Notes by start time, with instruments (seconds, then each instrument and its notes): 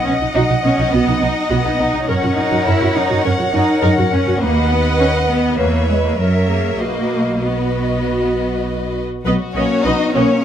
Already playing: clarinet D#5, violin section D#5 F#5, flute section F#5
0.05 double bass section B1, viola section B3, cello section C#4
0.20 double bass section B1, viola section D#4
0.34 double bass section B1, cello section D#4, viola section F#4, clarinet D#5, flute section F#5
0.50 double bass section B1, viola section D#4
0.64 double bass section B1, viola section B3, cello section C#4
0.78 double bass section B1, viola section D#4
0.92 double bass section B1, cello section B3, viola section F#4, clarinet D#5, flute section F#5
1.07 double bass section B1, viola section D#4
1.21 double bass section B1, viola section B3, cello section D#4
1.50 double bass section B1, cello section B3, viola section F#4, clarinet D#5, flute section F#5
1.65 double bass section B1, viola section D#4
1.79 double bass section B1, viola section B3, cello section D#4
1.94 double bass section B1, viola section D#4
2.08 double bass section F#2, cello section C#4, viola section A#4, clarinet A#4, violin section C#5 F#5, flute section F#5
2.23 double bass section F#2, viola section F#4
2.36 double bass section F#2, viola section C#4, cello section D#4
2.51 double bass section F#2, viola section F#4
2.65 double bass section F#2, cello section E4, viola section A#4
2.80 double bass section F#2, viola section F#4
2.95 double bass section F#2, viola section C#4, cello section D#4
3.09 double bass section F#2, viola section F#4
3.23 double bass section F#2, cello section C#4, viola section A#4, clarinet A#4, flute section F#5
3.38 double bass section F#2, viola section F#4
3.53 double bass section F#2, viola section C#4, cello section D#4
3.82 double bass section F#2, cello section D#4, viola section A#4
3.97 double bass section F#2, viola section F#4
4.12 double bass section F#2, cello section C#4, viola section C#4
4.26 double bass section F#2, viola section F#4
4.41 double bass section D#2, cello section A#3, viola section B4, clarinet B4, violin section D#5 F#5, flute section F#5
4.71 cello section B3
5.00 cello section C#4
5.30 cello section B3
5.59 double bass section E2, cello section A#3, clarinet B4, viola section B4, flute section C#5, violin section C#5 E5
5.89 cello section G#3, flute section D#5
6.05 cello section A#3
6.19 double bass section F#2, cello section F#3, viola section A#4, clarinet A#4, violin section C#5 E5, flute section E5
6.48 cello section A#3, clarinet G#4
6.79 double bass section B1, cello section A#3, clarinet F#4, viola section F#4, violin section B4 D#5, flute section D#5
7.41 cello section B3, clarinet F#4, viola section F#4, violin section B4 D#5, flute section D#5
9.25 double bass section B1, french horn section F#3, cello section B3, violin section F#4 B4, viola section B4 D#5
9.55 double bass section B1, french horn section A#3, cello section C#4, viola section B4 D#5, violin section C#5
9.84 double bass section B1, french horn section B3, cello section D#4, viola section B4 D#5, violin section D#5
10.15 double bass section B1, french horn section A#3, cello section C#4, viola section B4 D#5, violin section C#5